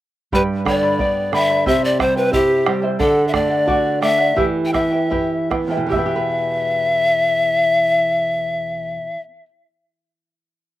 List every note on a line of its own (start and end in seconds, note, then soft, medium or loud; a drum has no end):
0.32 1.63 G2 medium
0.32 0.66 G4 medium
0.32 0.65 B4 medium
0.32 0.42 B4 medium
0.32 0.66 D5 medium
0.32 0.64 G5 medium
0.32 0.66 B5 medium
0.32 bombo low medium
0.65 0.98 D3 medium
0.65 0.83 B4 medium
0.65 0.82 D5 medium
0.65 1.36 D5 medium
0.65 0.83 G5 soft
0.65 0.81 B5 medium
0.65 bombo rim soft
0.65 bombo low soft
0.83 0.99 B4 soft
0.83 1.00 D5 soft
0.83 1.00 B5 soft
0.99 1.32 B3 soft
0.99 1.33 B4 medium
0.99 1.33 D5 medium
0.99 1.32 G5 medium
0.99 1.33 B5 medium
0.99 bombo low medium
1.32 1.65 D3 soft
1.32 1.50 B4 medium
1.32 1.50 D5 medium
1.32 1.67 E5 medium
1.32 1.50 G5 medium
1.32 1.49 B5 medium
1.32 bombo rim soft
1.50 1.66 B4 soft
1.50 1.67 D5 soft
1.50 1.67 B5 soft
1.66 2.96 C3 medium
1.66 1.98 E4 medium
1.66 2.00 G4 medium
1.66 1.99 C5 medium
1.66 1.98 E5 medium
1.66 1.86 E5 medium
1.66 1.99 G5 medium
1.66 bombo low medium
1.85 2.02 D5 medium
1.99 2.32 G3 soft
1.99 2.16 E4 soft
1.99 2.15 C5 medium
1.99 2.17 C5 medium
1.99 2.16 E5 medium
1.99 2.15 G5 medium
1.99 bombo rim soft
1.99 bombo low soft
2.16 2.32 E4 soft
2.16 2.35 B4 medium
2.16 2.32 C5 soft
2.16 2.32 G5 soft
2.32 2.65 E4 medium
2.32 2.66 E4 soft
2.32 2.84 G4 medium
2.32 2.66 C5 medium
2.32 2.65 E5 medium
2.32 2.66 G5 medium
2.32 bombo low medium
2.66 3.00 G3 medium
2.66 2.82 E4 soft
2.66 2.82 C5 medium
2.66 2.83 E5 medium
2.66 2.81 G5 medium
2.66 bombo rim medium
2.82 3.00 E4 soft
2.82 2.99 C5 soft
2.82 3.00 G5 soft
2.99 4.34 D3 medium
2.99 3.31 A4 medium
2.99 3.29 A4 medium
2.99 3.32 D5 medium
2.99 3.33 F#5 medium
2.99 bombo low medium
3.28 3.36 E5 medium
3.33 3.67 A3 soft
3.33 3.50 A4 medium
3.33 3.49 D5 medium
3.33 4.03 D5 medium
3.33 3.48 F#5 medium
3.33 bombo rim soft
3.33 bombo low medium
3.49 3.66 D5 soft
3.49 3.67 F#5 soft
3.67 4.01 F#4 soft
3.67 4.00 A4 soft
3.67 4.01 D5 medium
3.67 4.01 F#5 medium
3.67 bombo low medium
4.01 4.37 A3 soft
4.01 4.20 A4 medium
4.01 4.19 D5 medium
4.01 4.45 E5 medium
4.01 4.17 F#5 medium
4.01 bombo rim soft
4.18 4.37 D5 soft
4.18 4.37 F#5 medium
4.36 5.85 E3 medium
4.36 4.72 E4 medium
4.36 4.73 G4 medium
4.36 4.72 B4 medium
4.36 4.71 E5 medium
4.36 4.73 G5 medium
4.36 bombo low medium
4.66 4.75 G5 soft
4.72 5.11 B3 soft
4.72 4.91 E4 medium
4.72 4.91 B4 medium
4.72 4.92 E5 medium
4.72 5.51 E5 medium
4.72 4.90 G5 medium
4.72 bombo rim soft
4.72 bombo low soft
4.92 5.09 E4 soft
4.92 5.10 B4 soft
4.92 5.10 G5 soft
5.10 5.49 E4 medium
5.10 5.49 G4 soft
5.10 5.49 B4 medium
5.10 5.49 E5 medium
5.10 5.50 G5 medium
5.10 bombo low soft
5.50 5.90 B3 soft
5.50 5.70 E4 medium
5.50 5.70 B4 medium
5.50 5.71 E5 soft
5.50 5.69 G5 soft
5.50 bombo rim soft
5.50 bombo low soft
5.68 8.97 E2 soft
5.68 5.92 E4 soft
5.68 5.92 B4 soft
5.68 5.91 G5 soft
5.77 9.07 B2 soft
5.86 9.16 E3 soft
5.86 9.39 G4 medium
5.91 9.44 E4 medium
5.91 9.21 E5 medium
5.91 9.42 E5 medium
5.91 bombo low medium
5.96 9.26 B3 soft
5.96 9.46 B4 medium
5.96 9.48 G5 medium
6.06 9.35 G4 soft
6.16 9.45 B4 soft